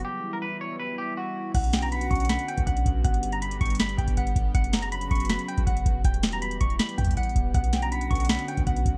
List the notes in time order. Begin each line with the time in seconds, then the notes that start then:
Already playing: B3
0.04 E3 G3 E4 G4
0.33 A#4
0.42 B4
0.61 C#5
0.79 B4
0.98 G4
1.17 F#4
1.54 B1 D3 B3 C#4 F#4 F#5, kick, closed hi-hat, crash
1.64 closed hi-hat
1.73 G5, snare, closed hi-hat
1.82 A#5, closed hi-hat
1.92 F#5 B5, closed hi-hat
2.01 closed hi-hat
2.11 B1 C#6, kick, closed hi-hat
2.15 closed hi-hat
2.20 closed hi-hat
2.25 closed hi-hat
2.29 B5, snare, closed hi-hat
2.39 closed hi-hat
2.48 G5, closed hi-hat
2.58 B1, kick, closed hi-hat
2.67 B1 F#5, kick, closed hi-hat
2.77 closed hi-hat
2.86 B1, kick, closed hi-hat
3.04 G1 G3 G4 F#5, kick, closed hi-hat
3.14 closed hi-hat
3.23 closed hi-hat
3.32 A#5, closed hi-hat
3.42 B5, closed hi-hat
3.51 closed hi-hat
3.61 G1 C#6, kick, closed hi-hat
3.66 closed hi-hat
3.70 closed hi-hat
3.75 closed hi-hat
3.79 B5, snare, closed hi-hat
3.89 closed hi-hat
3.98 G1 G5, kick, closed hi-hat
4.08 kick, closed hi-hat
4.17 F#5, kick, closed hi-hat
4.27 closed hi-hat
4.36 G1, kick, closed hi-hat
4.55 F#1 C#3 F#3 F#4 F#5, kick, closed hi-hat
4.64 closed hi-hat
4.73 A#5, snare, closed hi-hat
4.82 A#5, closed hi-hat
4.92 B5, closed hi-hat
5.01 closed hi-hat
5.11 F#1 C#6, kick, closed hi-hat
5.15 closed hi-hat
5.20 closed hi-hat
5.25 closed hi-hat
5.29 B5, snare, closed hi-hat
5.39 closed hi-hat
5.48 G5, closed hi-hat
5.58 F#1, kick, closed hi-hat
5.67 F#1 F#5, kick, closed hi-hat
5.77 closed hi-hat
5.86 F#1, kick, closed hi-hat
6.04 E1 E3 G3 B3 G4 G5, kick, closed hi-hat
6.14 closed hi-hat
6.23 snare, closed hi-hat
6.32 A#5, closed hi-hat
6.42 B5, closed hi-hat
6.51 closed hi-hat
6.61 E1 C#6, kick, closed hi-hat, open hi-hat
6.70 closed hi-hat
6.79 B5, snare, closed hi-hat
6.89 closed hi-hat
6.98 E2 G5, kick, closed hi-hat
7.05 kick, closed hi-hat
7.11 closed hi-hat
7.17 F#5, kick, closed hi-hat
7.23 closed hi-hat
7.29 closed hi-hat
7.36 E1, kick, closed hi-hat
7.54 B1 D3 C#4 F#4 F#5, kick, closed hi-hat
7.64 closed hi-hat
7.73 G5, snare, closed hi-hat
7.82 A#5, closed hi-hat
7.92 F#5 B5, closed hi-hat
8.01 closed hi-hat
8.11 B1 C#6, kick, closed hi-hat
8.15 closed hi-hat
8.20 closed hi-hat
8.25 closed hi-hat
8.29 B5, snare, closed hi-hat
8.39 closed hi-hat
8.48 G5, closed hi-hat
8.57 B1, kick, closed hi-hat
8.67 B1 F#5, kick, closed hi-hat
8.76 closed hi-hat
8.86 B1, kick, closed hi-hat